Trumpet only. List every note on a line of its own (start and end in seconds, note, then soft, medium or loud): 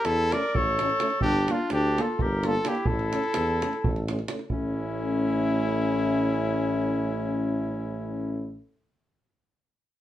0.05 0.34 A4 loud
0.33 0.58 D5 loud
0.57 1.22 C#5 loud
1.22 1.53 G4 loud
1.52 1.72 F4 loud
1.72 2.02 G4 loud
2.01 2.24 A4 loud
2.23 2.48 A#4 loud
2.47 2.70 A4 loud
2.68 2.88 G4 medium
2.87 4.11 A4 loud
4.52 8.59 E4 loud